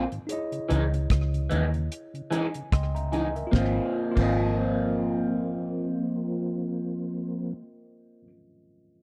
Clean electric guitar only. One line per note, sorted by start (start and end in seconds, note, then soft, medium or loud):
0.69 0.83 E3 medium
0.69 0.84 G#3 medium
0.69 0.84 D#4 loud
1.50 1.64 E3 medium
1.50 1.65 G#3 medium
1.50 1.65 D#4 medium
2.31 2.45 E3 medium
2.31 2.46 G#3 medium
2.31 2.46 D#4 medium
3.12 3.27 E3 medium
3.12 3.27 G#3 medium
3.12 3.28 D#4 medium
3.52 4.15 A#3 medium
3.52 4.18 C4 medium
3.57 4.20 F4 medium
4.16 8.27 A#3 medium
4.16 8.28 C4 medium
4.20 8.29 F4 medium